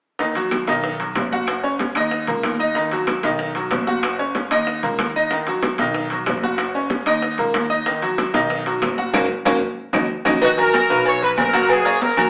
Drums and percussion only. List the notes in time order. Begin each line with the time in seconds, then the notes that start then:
0.19 high bongo, high conga
0.35 high bongo, high conga, high timbale
0.51 high bongo, high conga, high timbale, claves
0.68 high conga, high timbale
0.84 high bongo, high conga
0.99 high bongo, high conga, high timbale
1.15 high bongo, low bongo, high conga, high timbale, low timbale, claves
1.32 high bongo, high conga
1.47 high bongo, high conga, high timbale, claves
1.64 high bongo, high conga
1.79 high bongo, high conga, high timbale
1.95 high conga, high timbale, claves
2.11 high bongo, high conga
2.27 high bongo, high conga, high timbale
2.43 high bongo, low bongo, high conga, high timbale, claves
2.75 high bongo, high conga
2.91 high bongo, high conga, high timbale
3.07 high bongo, high conga, high timbale, claves
3.23 high conga, high timbale
3.39 high bongo
3.55 high bongo, high conga, high timbale
3.71 high bongo, low bongo, high conga, high timbale, claves
3.87 high bongo, high conga
4.03 high bongo, high conga, high timbale, claves
4.19 high bongo, high conga
4.35 high bongo, high conga, high timbale
4.51 high conga, high timbale, claves
4.67 high bongo, high conga
4.83 high bongo, high conga, high timbale
4.99 high bongo, low bongo, high conga, high timbale, claves
5.31 high bongo, high conga
5.47 high bongo, high conga, high timbale
5.63 high bongo, high conga, high timbale, claves
5.78 high conga, high timbale
5.95 high bongo, high conga
6.10 high bongo, high conga, high timbale
6.26 high bongo, low bongo, high conga, high timbale, low timbale, claves
6.42 high bongo, high conga
6.58 high bongo, high conga, high timbale, claves
6.75 high bongo, high conga
6.90 high bongo, high conga, high timbale
7.06 high conga, high timbale, claves
7.22 high bongo, high conga
7.38 high bongo, high timbale
7.54 high bongo, low bongo, high conga, high timbale, claves
7.86 high bongo, high conga
8.02 high bongo, high conga, high timbale
8.18 high bongo, high conga, high timbale, claves
8.34 high conga, high timbale
8.50 high bongo, high conga
8.66 high bongo, high conga, high timbale
8.82 high bongo, low bongo, high conga, high timbale, claves
8.98 high bongo, high conga
9.13 low bongo, low conga, high timbale, claves
9.45 low bongo, low conga, high timbale, claves
9.93 low bongo, low conga, high timbale, claves
10.25 low bongo, low conga, high timbale, claves
10.41 cowbell, high conga, low agogo
10.58 high conga, low agogo
10.73 cowbell, high conga, low agogo, claves
10.90 high conga
11.05 cowbell, high conga, low agogo
11.22 high conga
11.37 cowbell, high conga, low timbale, low agogo, claves
11.53 cowbell, high conga, low agogo
11.69 cowbell, high conga, low agogo, claves
11.85 high conga, low agogo
12.01 cowbell, high conga
12.17 low conga, low agogo, claves